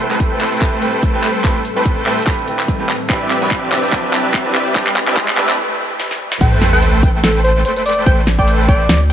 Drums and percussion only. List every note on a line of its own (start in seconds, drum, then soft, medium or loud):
0.11 clap soft
0.20 kick medium
0.20 closed hi-hat medium
0.41 clap medium
0.41 closed hi-hat soft
0.47 closed hi-hat medium
0.52 closed hi-hat soft
0.57 closed hi-hat medium
0.62 kick medium
0.62 clap soft
0.62 closed hi-hat medium
0.82 closed hi-hat medium
1.03 kick loud
1.03 closed hi-hat medium
1.24 clap medium
1.24 closed hi-hat medium
1.44 kick loud
1.44 clap medium
1.44 closed hi-hat medium
1.65 closed hi-hat medium
1.86 kick medium
1.86 closed hi-hat medium
2.06 clap medium
2.06 closed hi-hat soft
2.12 closed hi-hat medium
2.18 closed hi-hat soft
2.22 closed hi-hat medium
2.27 kick loud
2.27 clap medium
2.27 closed hi-hat medium
2.48 closed hi-hat medium
2.59 clap medium
2.68 kick loud
2.68 closed hi-hat medium
2.89 clap medium
2.89 closed hi-hat medium
3.10 kick loud
3.10 clap medium
3.10 closed hi-hat medium
3.31 clap medium
3.31 closed hi-hat medium
3.51 kick medium
3.51 clap medium
3.51 closed hi-hat medium
3.72 clap medium
3.72 closed hi-hat soft
3.78 closed hi-hat medium
3.83 closed hi-hat soft
3.88 closed hi-hat medium
3.93 kick loud
3.93 clap medium
3.93 closed hi-hat medium
4.13 clap medium
4.13 closed hi-hat medium
4.34 kick loud
4.34 clap medium
4.34 closed hi-hat medium
4.55 clap medium
4.55 closed hi-hat medium
4.75 kick medium
4.75 clap medium
4.75 closed hi-hat medium
4.87 clap medium
4.96 clap medium
4.96 closed hi-hat medium
5.08 clap medium
5.17 kick loud
5.17 clap loud
5.17 closed hi-hat medium
5.28 clap medium
5.37 clap loud
5.37 closed hi-hat soft
5.43 closed hi-hat medium
5.49 clap medium
5.49 closed hi-hat soft
5.54 closed hi-hat medium
6.00 snare medium
6.11 snare medium
6.32 snare medium
6.41 kick loud
6.41 closed hi-hat medium
6.41 crash loud
6.62 snare medium
6.62 closed hi-hat medium
6.82 closed hi-hat medium
7.03 kick loud
7.03 closed hi-hat medium
7.24 snare loud
7.24 closed hi-hat medium
7.44 closed hi-hat medium
7.65 closed hi-hat medium
7.76 closed hi-hat medium
7.86 closed hi-hat medium
7.86 open hi-hat medium
7.93 closed hi-hat medium
8.06 kick loud
8.06 closed hi-hat medium
8.27 snare medium
8.27 closed hi-hat medium
8.39 kick medium
8.48 closed hi-hat medium
8.69 kick loud
8.69 closed hi-hat medium
8.89 snare loud
8.89 closed hi-hat medium